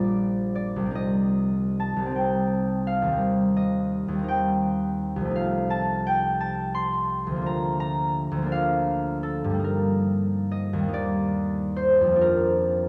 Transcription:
0.00 0.90 A#1 soft
0.00 0.79 G3 soft
0.00 0.94 A#3 soft
0.00 0.94 D4 soft
0.00 0.99 A#4 medium
0.00 0.54 D5 medium
0.55 0.99 D5 medium
0.76 1.95 C2 soft
0.81 2.00 G3 soft
0.86 2.05 C4 soft
0.91 2.10 D#4 soft
0.95 3.55 D#5 medium
1.80 2.41 A5 medium
1.96 3.16 C2 soft
2.02 3.06 G3 soft
2.06 3.11 C4 soft
2.11 3.15 D#4 soft
2.16 4.27 G5 medium
2.87 4.07 F5 medium
3.02 4.07 D#2 soft
3.07 4.12 G3 soft
3.12 4.18 C4 soft
3.17 4.23 D#4 soft
3.57 7.47 D#5 medium
4.08 5.28 D#2 soft
4.13 5.31 G3 soft
4.19 7.43 C4 soft
4.24 5.29 D#4 soft
4.29 5.38 G5 medium
5.16 7.39 C2 soft
5.21 7.30 F3 soft
5.25 7.43 A3 soft
5.31 7.46 D#4 soft
5.36 8.51 F5 medium
5.70 6.39 A5 medium
6.07 6.66 G5 medium
6.40 7.48 A5 medium
6.75 7.47 C6 medium
7.27 8.30 D2 medium
7.32 8.36 F3 soft
7.36 8.41 A#3 soft
7.42 8.45 D4 soft
7.46 7.79 A#5 medium
7.80 11.70 A#5 medium
8.31 9.57 D2 medium
8.37 9.60 F3 soft
8.42 9.53 A#3 soft
8.42 9.64 D4 soft
8.52 9.67 F5 medium
9.23 9.93 A4 medium
9.44 10.86 G2 medium
9.50 10.77 G3 soft
9.54 10.82 A#3 soft
9.59 10.87 D#4 soft
9.64 12.20 A#4 medium
10.51 12.25 D#5 medium
10.73 12.15 D#2 soft
10.78 12.17 G3 soft
10.83 12.10 A#3 soft
10.88 12.22 D#4 soft
10.94 12.39 D5 medium
11.76 12.52 C5 medium
12.01 12.89 F2 soft
12.07 12.89 F3 soft
12.11 12.89 A#3 soft
12.16 12.89 D4 soft
12.21 12.89 A#4 medium

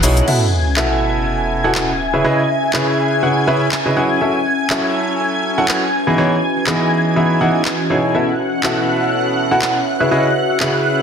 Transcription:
0.00 0.20 B1 medium
0.00 0.25 B2 medium
0.00 0.25 B3 medium
0.00 0.27 C#4 medium
0.00 0.25 D#4 medium
0.00 0.25 E4 medium
0.00 4.21 F#4 medium
0.00 0.25 G#4 medium
0.00 4.21 B4 medium
0.00 0.25 C#5 medium
0.00 0.29 F#5 medium
0.00 0.29 F#6 medium
0.00 open hi-hat medium
0.00 shaker medium
0.17 closed hi-hat soft
0.17 shaker soft
0.28 0.44 B2 medium
0.28 0.44 B3 medium
0.28 11.02 C#4 medium
0.28 0.44 E4 medium
0.28 0.44 F#4 medium
0.28 0.44 A4 medium
0.28 0.44 E5 medium
0.28 8.16 G#5 medium
0.28 8.16 G#6 medium
0.28 crash medium
0.28 sub drop medium
0.61 5.94 E5 medium
0.77 1.61 B2 medium
0.77 1.61 B3 medium
0.77 1.61 E4 medium
0.77 1.61 F#4 medium
0.77 1.61 A4 medium
0.77 1.61 E5 loud
0.77 clap loud
1.64 1.89 B2 medium
1.64 1.89 B3 medium
1.64 1.89 E4 medium
1.64 1.89 F#4 medium
1.64 1.89 A4 medium
1.64 1.89 F#5 medium
1.75 clap loud
2.14 2.23 C#3 medium
2.14 2.23 C#4 medium
2.14 2.23 E4 medium
2.14 2.23 G#4 medium
2.14 2.23 B4 medium
2.14 2.23 E5 medium
2.24 2.41 C#3 medium
2.24 2.41 C#4 medium
2.24 2.41 E4 medium
2.24 2.41 G#4 medium
2.24 2.41 B4 medium
2.24 2.41 D#5 medium
2.73 3.20 C#3 medium
2.73 3.20 C#4 medium
2.73 3.20 E4 medium
2.73 3.20 G#4 medium
2.73 3.20 B4 medium
2.73 3.20 E5 medium
2.73 clap loud
3.23 3.45 C#3 medium
3.23 3.45 C#4 medium
3.23 3.45 E4 medium
3.23 3.45 G#4 medium
3.23 3.45 B4 medium
3.23 3.45 F#5 medium
3.47 3.64 C#3 medium
3.47 3.64 C#4 medium
3.47 3.64 E4 medium
3.47 3.64 G#4 medium
3.47 3.64 B4 medium
3.47 3.64 E5 medium
3.72 clap loud
3.86 3.94 C#3 medium
3.86 3.94 C#4 medium
3.86 3.94 E4 medium
3.86 3.94 G#4 medium
3.86 3.94 B4 medium
3.86 3.94 D#5 medium
3.97 4.18 F#3 medium
3.97 4.18 C#4 medium
3.97 4.18 E4 medium
3.97 4.18 G#4 medium
3.97 4.18 B4 medium
3.97 4.18 F#5 medium
4.21 4.37 F#3 medium
4.21 4.37 C#4 medium
4.21 4.37 E4 medium
4.21 4.37 F#4 medium
4.21 4.37 A4 medium
4.21 4.37 E5 medium
4.52 11.02 F#4 medium
4.70 5.55 F#3 medium
4.70 5.55 C#4 medium
4.70 5.55 E4 medium
4.70 5.55 F#4 medium
4.70 5.55 A4 medium
4.70 5.55 E5 medium
4.70 clap loud
4.99 11.02 B4 medium
5.58 5.82 F#3 medium
5.58 5.82 C#4 medium
5.58 5.82 E4 medium
5.58 5.82 F#4 medium
5.58 5.82 A4 medium
5.58 5.82 F#5 medium
5.68 clap loud
5.94 8.15 E3 medium
6.07 6.16 E3 medium
6.07 6.16 B3 medium
6.07 6.16 D#4 medium
6.07 6.16 E4 medium
6.07 6.16 G#4 medium
6.07 6.16 D#5 medium
6.18 6.34 E3 medium
6.18 6.34 B3 medium
6.18 6.34 D#4 medium
6.18 6.34 E4 medium
6.18 6.34 G#4 medium
6.18 6.34 C#5 medium
6.57 8.15 D#5 medium
6.67 7.14 E3 medium
6.67 7.14 B3 medium
6.67 7.14 D#4 medium
6.67 7.14 E4 medium
6.67 7.14 G#4 medium
6.67 7.14 D#5 medium
6.67 clap loud
7.16 7.38 E3 medium
7.16 7.38 B3 medium
7.16 7.38 D#4 medium
7.16 7.38 E4 medium
7.16 7.38 G#4 medium
7.16 7.38 E5 medium
7.41 7.65 E3 medium
7.41 7.65 B3 medium
7.41 7.65 D#4 medium
7.41 7.65 E4 medium
7.41 7.65 G#4 medium
7.41 7.65 F#5 medium
7.65 clap loud
7.90 8.11 B2 medium
7.90 8.11 B3 medium
7.90 8.11 D#4 medium
7.90 8.11 E4 medium
7.90 8.11 G#4 medium
7.90 8.11 C#5 medium
8.15 8.31 B2 medium
8.15 8.31 B3 medium
8.15 8.31 E4 medium
8.15 8.31 F#4 medium
8.15 8.31 A4 medium
8.15 8.31 E5 medium
8.15 11.02 F#5 medium
8.15 11.02 F#6 medium
8.63 9.48 B2 medium
8.63 9.48 B3 medium
8.63 9.48 E4 medium
8.63 9.48 F#4 medium
8.63 9.48 A4 medium
8.63 9.48 E5 loud
8.63 clap loud
8.92 11.02 E5 medium
9.51 9.75 B2 medium
9.51 9.75 B3 medium
9.51 9.75 E4 medium
9.51 9.75 F#4 medium
9.51 9.75 A4 medium
9.51 9.75 F#5 medium
9.62 clap loud
10.00 10.10 C#3 medium
10.00 10.10 C#4 medium
10.00 10.10 E4 medium
10.00 10.10 G#4 medium
10.00 10.10 B4 medium
10.00 10.10 E5 medium
10.11 10.28 C#3 medium
10.11 10.28 C#4 medium
10.11 10.28 E4 medium
10.11 10.28 G#4 medium
10.11 10.28 B4 medium
10.11 10.28 D#5 medium
10.60 11.02 C#3 medium
10.60 11.02 C#4 medium
10.60 11.02 E4 medium
10.60 11.02 G#4 medium
10.60 11.02 B4 medium
10.60 11.02 E5 medium
10.60 clap loud

